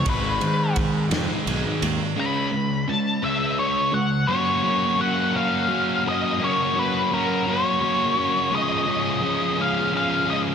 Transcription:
0.06 fingered electric bass G#1, distorted electric guitar G#2 D#3 G#3, lead electric guitar B4, kick, ride
0.40 fingered electric bass G#2, distorted electric guitar G#2 D#3, ride
0.76 distorted electric guitar G#2 D#3, kick, ride
1.10 fingered electric bass F2, distorted electric guitar G#2 D#3 G#3, snare, ride
1.46 fingered electric bass B1, ride
1.82 fingered electric bass D#2, distorted electric guitar G#2 D#3, ride
2.17 distorted electric guitar C#3 G#3 C#4, lead electric guitar B5
2.53 distorted electric guitar C#3 G#3
2.88 distorted electric guitar C#3 G#3, lead electric guitar A5
3.22 distorted electric guitar C#3 G#3 C#4, lead electric guitar E5
3.59 lead electric guitar C#5
3.92 distorted electric guitar C#3 G#3, lead electric guitar F#5
4.27 distorted electric guitar F#3 A#3 C#4, lead electric guitar C#5
4.31 distorted electric guitar F#4
4.63 distorted electric guitar A#3 C#4 F#4
4.98 distorted electric guitar F#3 A#3 C#4 F#4, lead electric guitar F#5
5.34 distorted electric guitar A#3 C#4 F#4, lead electric guitar F5
5.68 distorted electric guitar F#3 A#3 C#4 F#4
6.04 distorted electric guitar A#3 C#4 F#4
6.08 lead electric guitar D#5
6.38 distorted electric guitar F#3 A#3 C#4 F#4
6.44 lead electric guitar C#5
6.74 distorted electric guitar A#3 C#4 F#4
6.79 lead electric guitar B4
7.10 distorted electric guitar F#3 A#3 C#4 F#4, lead electric guitar A#4
7.47 distorted electric guitar A#3 C#4 F#4, lead electric guitar C#5
7.81 distorted electric guitar F#3 A#3 C#4 F#4
8.15 distorted electric guitar A#3 C#4 F#4
8.50 distorted electric guitar F3 G#3 C#4 G#4
8.55 lead electric guitar D#5
8.86 distorted electric guitar G#3 C#4 G#4
9.22 distorted electric guitar F3 G#3 C#4 G#4
9.57 distorted electric guitar G#3 C#4 G#4
9.62 lead electric guitar F5
9.92 distorted electric guitar F3 G#3 C#4 G#4
9.97 lead electric guitar F5
10.27 distorted electric guitar G#3 C#4 G#4, lead electric guitar D#5

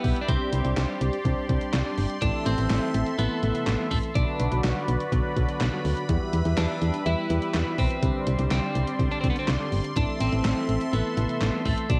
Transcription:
Already playing: tine electric piano G3 B3 E4 G4 B4, clean electric guitar B3, analog synth pad G4 B4 E5 B5
0.04 fm bass B1, kick, open hi-hat
0.16 closed hi-hat
0.21 clean electric guitar D4
0.28 fm bass C2, tine electric piano G3 C4 D4 G4 C5, clean electric guitar C4, analog synth pad D5 C6, kick, closed hi-hat
0.53 fm bass C2, closed hi-hat
0.65 fm bass C2, tine electric piano G3 C4 D4 G4 C5, closed hi-hat
0.77 fm bass C2, snare, clap, closed hi-hat
1.01 fm bass C2, closed hi-hat
1.13 closed hi-hat
1.25 fm bass C2, tine electric piano G3 C4 D4 G4 C5, kick, closed hi-hat
1.49 fm bass C2, tine electric piano G3 C4 D4 G4 C5, kick, closed hi-hat
1.61 closed hi-hat
1.73 fm bass C2, snare, clap, closed hi-hat
1.86 tine electric piano G3 C4 D4 G4 D5
1.98 fm bass G1, open hi-hat
2.10 closed hi-hat
2.22 fm bass A1, tine electric piano E3 A3 C4 E4 A4, clean electric guitar D4, analog synth pad A4 E5, kick, closed hi-hat
2.46 fm bass A1, clean electric guitar C4, closed hi-hat
2.58 fm bass A1, tine electric piano E3 A3 C4 E4 A4, closed hi-hat
2.70 fm bass A1, snare, clap, closed hi-hat
2.94 fm bass A1, closed hi-hat
3.07 closed hi-hat
3.19 fm bass A1, tine electric piano E3 A3 C4 E4 A4, clean electric guitar B3, closed hi-hat
3.43 fm bass A1, tine electric piano C3 E3 A3 E4 A4, closed hi-hat
3.55 closed hi-hat
3.67 fm bass A1, snare, clap, closed hi-hat
3.79 tine electric piano E3 A3 C4 E4 A4
3.91 fm bass A1, clean electric guitar A3, kick, open hi-hat
4.03 closed hi-hat
4.15 fm bass B1, tine electric piano D3 F#3 B3 D4 F#4, clean electric guitar D4, analog synth pad F#4 B4 D5 B5, kick, closed hi-hat
4.40 fm bass B1, closed hi-hat
4.52 fm bass B1, tine electric piano D3 F#3 B3 D4 F#4, closed hi-hat
4.64 fm bass B1, snare, clap, closed hi-hat
4.88 fm bass B1, closed hi-hat
5.00 closed hi-hat
5.12 fm bass B1, tine electric piano D3 F#3 B3 D4 F#4, kick, closed hi-hat
5.36 fm bass B1, tine electric piano D3 F#3 B3 D4 F#4, kick, closed hi-hat
5.49 closed hi-hat
5.61 fm bass B1, snare, clap, closed hi-hat
5.73 tine electric piano D3 F#3 B3 D4 F#4
5.85 fm bass D2, open hi-hat
5.97 closed hi-hat
6.09 fm bass E2, tine electric piano E3 G3 B3 E4 G4, analog synth pad G3 B4 E5, kick, closed hi-hat
6.33 fm bass E2, closed hi-hat
6.45 fm bass E2, tine electric piano E3 G3 B3 E4 G4, closed hi-hat
6.57 fm bass E2, clean electric guitar D4, snare, clap, closed hi-hat
6.82 fm bass E2, closed hi-hat
6.94 closed hi-hat
7.06 fm bass E2, tine electric piano E3 G3 B3 E4 G4, clean electric guitar E4, closed hi-hat
7.30 fm bass E2, tine electric piano E3 G3 B3 E4 G4, closed hi-hat
7.42 closed hi-hat
7.54 fm bass E2, snare, clap, closed hi-hat
7.67 tine electric piano E3 G3 B3 E4 F#4
7.78 fm bass B1, clean electric guitar C4, kick, open hi-hat
7.90 closed hi-hat
8.03 fm bass C2, tine electric piano D3 G3 C4 D4 G4, analog synth pad G3 D5 C6, kick, closed hi-hat
8.27 fm bass C2, closed hi-hat
8.39 fm bass C2, tine electric piano D3 G3 C4 D4 G4, closed hi-hat
8.51 fm bass C2, clean electric guitar C4, snare, clap, closed hi-hat
8.75 fm bass C2, closed hi-hat
8.87 closed hi-hat
8.99 fm bass C2, tine electric piano D3 G3 C4 D4 G4, kick, closed hi-hat
9.12 clean electric guitar D4
9.21 fm bass C2, tine electric piano D3 G3 C4 D4 F#4, clean electric guitar C4, kick, closed hi-hat
9.30 clean electric guitar B3
9.36 clean electric guitar C4, closed hi-hat
9.48 fm bass C2, snare, clap, closed hi-hat
9.60 tine electric piano D3 G3 C4 D4 G4
9.72 fm bass G1, open hi-hat
9.84 closed hi-hat
9.96 fm bass A1, tine electric piano E3 A3 C4 E4 A4, clean electric guitar D4, analog synth pad A4 E5, kick, closed hi-hat
10.20 fm bass A1, clean electric guitar C4, closed hi-hat
10.32 fm bass A1, tine electric piano E3 A3 C4 E4 A4, closed hi-hat
10.45 fm bass A1, snare, clap, closed hi-hat
10.69 fm bass A1, closed hi-hat
10.81 closed hi-hat
10.93 fm bass A1, tine electric piano E3 A3 C4 E4 A4, clean electric guitar B3, closed hi-hat
11.17 fm bass A1, tine electric piano C3 E3 A3 E4 A4, closed hi-hat
11.29 closed hi-hat
11.41 fm bass A1, snare, clap, closed hi-hat
11.53 tine electric piano E3 A3 C4 E4 A4
11.65 fm bass A1, clean electric guitar A3, kick, open hi-hat
11.78 closed hi-hat
11.89 fm bass B1, tine electric piano D3 F#3 B3 D4 F#4, clean electric guitar D4, analog synth pad B4 D5 F#5 D6, kick, closed hi-hat

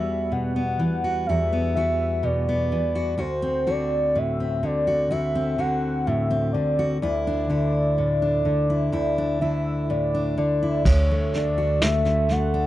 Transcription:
Already playing: steel-string acoustic guitar E2 E3 G3 B3 F#4, soft synth lead E5
0.32 steel-string acoustic guitar B2, soft synth lead F#5
0.56 steel-string acoustic guitar B3
0.79 steel-string acoustic guitar E3
1.04 steel-string acoustic guitar F#4
1.26 steel-string acoustic guitar E2 F#4, soft synth lead E5
1.53 steel-string acoustic guitar B3
1.75 steel-string acoustic guitar E3 F#4, soft synth lead E5
2.23 steel-string acoustic guitar B2, soft synth lead D5
2.49 steel-string acoustic guitar B3
2.72 steel-string acoustic guitar E3
2.95 steel-string acoustic guitar F#4
3.18 steel-string acoustic guitar D2 F#4, soft synth lead C5
3.42 steel-string acoustic guitar C4
3.67 steel-string acoustic guitar D3 F#4, soft synth lead D5
4.15 steel-string acoustic guitar A2, soft synth lead E5
4.40 steel-string acoustic guitar C4
4.63 steel-string acoustic guitar D3, soft synth lead D5
4.87 steel-string acoustic guitar F#4
5.11 steel-string acoustic guitar D2 F#4, soft synth lead E5
5.35 steel-string acoustic guitar C4
5.58 steel-string acoustic guitar D3 F#4, soft synth lead F#5
6.06 steel-string acoustic guitar A2, soft synth lead E5
6.31 steel-string acoustic guitar C4
6.53 steel-string acoustic guitar D3, soft synth lead D5
6.79 steel-string acoustic guitar F#4
7.02 steel-string acoustic guitar D2 E4, soft synth lead D5
7.27 steel-string acoustic guitar D4
7.50 steel-string acoustic guitar D3 E4
7.98 steel-string acoustic guitar A2
8.22 steel-string acoustic guitar D4
8.45 steel-string acoustic guitar D3
8.70 steel-string acoustic guitar E4
8.92 steel-string acoustic guitar D2 E4
9.18 steel-string acoustic guitar D4
9.41 steel-string acoustic guitar D3 E4, soft synth lead E5
9.90 steel-string acoustic guitar A2, soft synth lead D5
10.14 steel-string acoustic guitar D4
10.38 steel-string acoustic guitar D3, soft synth lead D5
10.63 steel-string acoustic guitar E4
10.85 upright bass D2, steel-string acoustic guitar D2, soft synth lead C#5, kick, snare, crash
11.11 steel-string acoustic guitar A3
11.33 steel-string acoustic guitar D4, soft synth lead D5, snare
11.58 steel-string acoustic guitar F#4
11.81 steel-string acoustic guitar A3, soft synth lead E5, snare
12.05 steel-string acoustic guitar D3, snare
12.29 steel-string acoustic guitar A3, soft synth lead F#5, snare
12.54 steel-string acoustic guitar D4

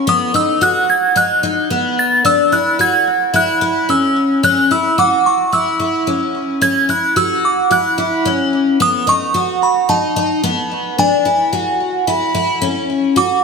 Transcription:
0.07 twelve-string acoustic guitar B3, synth bell D#6
0.34 twelve-string acoustic guitar D#4, synth bell E6
0.61 twelve-string acoustic guitar F#4, synth bell F#6
0.90 synth bell G#6
1.16 twelve-string acoustic guitar D#4, synth bell F#6
1.43 twelve-string acoustic guitar D#4
1.70 twelve-string acoustic guitar B3
1.99 synth bell A6
2.25 twelve-string acoustic guitar D4, synth bell E6
2.52 twelve-string acoustic guitar E4, synth bell F#6
2.79 twelve-string acoustic guitar F#4, synth bell G#6
3.34 twelve-string acoustic guitar E4, synth bell F#6
3.61 twelve-string acoustic guitar E4
3.89 twelve-string acoustic guitar C#4, synth bell E6
4.43 twelve-string acoustic guitar C#4, synth bell F#6
4.71 twelve-string acoustic guitar E4, synth bell E6
4.98 twelve-string acoustic guitar F#4, synth bell D6
5.26 synth bell C#6
5.53 twelve-string acoustic guitar E4, synth bell E6
5.80 twelve-string acoustic guitar E4
6.07 twelve-string acoustic guitar C#4
6.62 twelve-string acoustic guitar C#4, synth bell G#6
6.89 twelve-string acoustic guitar E4, synth bell F#6
7.16 twelve-string acoustic guitar F#4, synth bell E6
7.45 synth bell D6
7.71 twelve-string acoustic guitar E4, synth bell F#6
7.98 twelve-string acoustic guitar E4
8.25 twelve-string acoustic guitar C#4
8.80 twelve-string acoustic guitar B3, synth bell D#6
9.07 twelve-string acoustic guitar D#4, synth bell C#6
9.34 twelve-string acoustic guitar F#4
9.63 synth bell B5
9.89 twelve-string acoustic guitar D#4, synth bell A5
10.16 twelve-string acoustic guitar D#4
10.44 twelve-string acoustic guitar B3
10.98 twelve-string acoustic guitar D4, synth bell G#5
11.25 twelve-string acoustic guitar E4
11.53 twelve-string acoustic guitar F#4
12.07 twelve-string acoustic guitar E4
12.35 twelve-string acoustic guitar E4
12.62 twelve-string acoustic guitar C#4
13.16 twelve-string acoustic guitar F#4, synth bell D6

